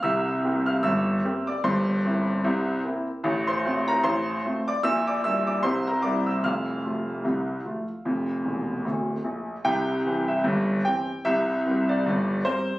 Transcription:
X:1
M:2/4
L:1/16
Q:"Swing 16ths" 1/4=75
K:F
V:1 name="Grand piano"
[ee']3 [ff'] [ee']3 [dd'] | [cc']6 z2 | z [cc']2 [Bb] [cc']3 [dd'] | [ee'] [dd'] [ee'] [dd'] [cc'] [Bb] [dd'] [ee'] |
[ff']8- | [ff']4 z4 | [K:C] g3 e3 g2 | e3 d3 c2 |]
V:2 name="Grand piano" clef=bass
[C,,C,]2 [B,CG]2 [G,,,G,,]2 [B,CG]2 | [G,,,G,,]2 [B,CE]2 [C,,C,]2 [B,CE]2 | [A,,,A,,]2 [A,CF]2 [A,,,A,,]2 [A,CF]2 | [B,,,B,,]2 [G,B,D]2 [C,,C,]2 [G,B,E]2 |
[F,,,F,,]2 [F,A,F]2 [C,,C,]2 [F,A,F]2 | [F,,,F,,]2 [E,,,E,,]2 [D,,,D,,]2 B,,,2 | [K:C] [C,,C,]2 [E,CG]2 [G,,,G,,]2 [E,CG]2 | [C,,C,]2 [G,C_B]2 [G,,,G,,]2 [G,CB]2 |]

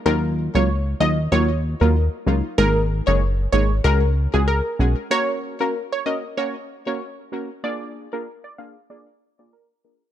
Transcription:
X:1
M:4/4
L:1/16
Q:"Swing 16ths" 1/4=95
K:F#
V:1 name="Synth pluck"
A z2 c2 z d2 c z2 A z4 | A2 z c z2 c z A z2 G A3 z | c2 z A z c d z c z2 c z4 | =d2 z A z d e z d z2 d A z A z |]
V:2 name="Synth stab"
[F,A,DE]3 [F,A,DE] z2 [F,A,DE] z [F,A,DE] z2 [F,A,DE] z2 [F,A,DE] z | [G,A,DG]3 [G,A,DG] z2 [G,A,DG] z [G,CFG] z2 [G,CFG] z2 [G,CFG] z | [A,CFA]3 [A,CFA] z2 [A,CFA] z [A,CFA] z2 [A,CFA] z2 [A,CFA] z | [A,=DEG]3 [A,DEG] z2 [A,DEG] z [A,DEG] z2 [A,DEG] z2 [A,DEG] z |]
V:3 name="Analog synth bass" clef=bass
D,,3 C,,3 D,,2 D,,3 D,,2 z C,, z | G,,,3 F,,,3 G,,,2 C,,3 C,,2 z B,,, z | z16 | z16 |]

